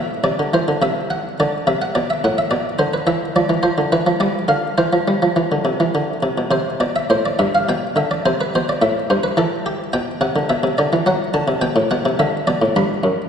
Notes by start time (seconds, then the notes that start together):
Already playing: B2 E5
0.24 C3 D5
0.39 D3
0.54 E3 C5
0.68 D3
0.82 C3 E5
1.10 F#5
1.40 D3 D5
1.67 C3 E5
1.82 F#5
1.95 B2 D5
2.10 E5
2.24 A2 F#5
2.38 E5
2.51 B2 D5
2.79 D3 C5
2.94 B4
3.07 E3 E5
3.36 F3 D5
3.49 E3
3.63 F3 C5
3.78 D3
3.92 E3 B4
4.07 F3
4.20 G3 D5
4.48 D3 F5
4.78 E3 C5
4.93 F3
5.08 G3
5.22 F3
5.36 E3
5.52 D3
5.65 C3
5.80 E3
5.95 D3
6.23 C3
6.38 B2
6.51 C3 C5
6.80 B2 D5
6.96 E5
7.10 A2 C5
7.26 D5
7.39 G2 E5
7.55 F5
7.69 B2 G5
7.96 D3 E5
8.11 D5
8.26 C3 C5
8.41 B4
8.55 B2 C5
8.69 D5
8.82 A2 E5
9.10 G2 C5
9.23 B4
9.37 E3 A4
9.66 G4
9.93 B2 G5
10.21 C3 F#5
10.36 D3
10.49 B2 E5
10.63 C3
10.78 D3 D5
10.93 E3
11.06 F#3 F#5
11.34 D3 A5
11.48 C3
11.61 B2 G5
11.76 A2
11.91 B2 F#5
12.05 C3
12.19 D3 E5
12.47 B2 D5
12.62 A2
12.76 G2 B5
13.04 F#2